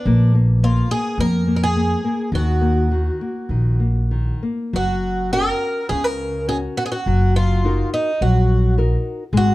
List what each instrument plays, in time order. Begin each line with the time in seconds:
Already playing: twelve-string acoustic guitar D4
0.06 upright bass A#1, nylon-string guitar A#3
0.35 nylon-string guitar A#3
0.63 nylon-string guitar A#3, twelve-string acoustic guitar F4
0.91 nylon-string guitar A#3, twelve-string acoustic guitar G#4
1.18 upright bass F2, nylon-string guitar A#3, twelve-string acoustic guitar A#4
1.47 nylon-string guitar A#3
1.56 twelve-string acoustic guitar A#4
1.63 twelve-string acoustic guitar G#4
1.76 nylon-string guitar A#3
2.04 nylon-string guitar A#3
2.32 upright bass D#2, nylon-string guitar D#3, twelve-string acoustic guitar F#4
2.61 nylon-string guitar A#3
2.92 nylon-string guitar D#3
3.21 nylon-string guitar A#3
3.49 upright bass A#1, nylon-string guitar D#3
3.80 nylon-string guitar A#3
4.11 nylon-string guitar D#3
4.43 nylon-string guitar A#3
4.73 upright bass F#1, nylon-string guitar F#3, twelve-string acoustic guitar F#4
5.33 nylon-string guitar C#4 F#4 A#4, twelve-string acoustic guitar A#4
5.89 upright bass C#2, nylon-string guitar C#3, twelve-string acoustic guitar G#4
6.04 twelve-string acoustic guitar A#4
6.48 nylon-string guitar C#4 F#4 A#4, twelve-string acoustic guitar G#4
6.77 twelve-string acoustic guitar F#4
6.86 twelve-string acoustic guitar G#4
6.92 twelve-string acoustic guitar F#4
7.06 upright bass F#1, nylon-string guitar F#3
7.36 twelve-string acoustic guitar F4
7.64 nylon-string guitar D#4 F#4 A#4
7.94 twelve-string acoustic guitar D#4
8.21 upright bass A#1, nylon-string guitar F#3, twelve-string acoustic guitar F#4
8.78 nylon-string guitar D#4 F#4 A#4
9.33 upright bass G#1, nylon-string guitar G#3
9.37 twelve-string acoustic guitar F#4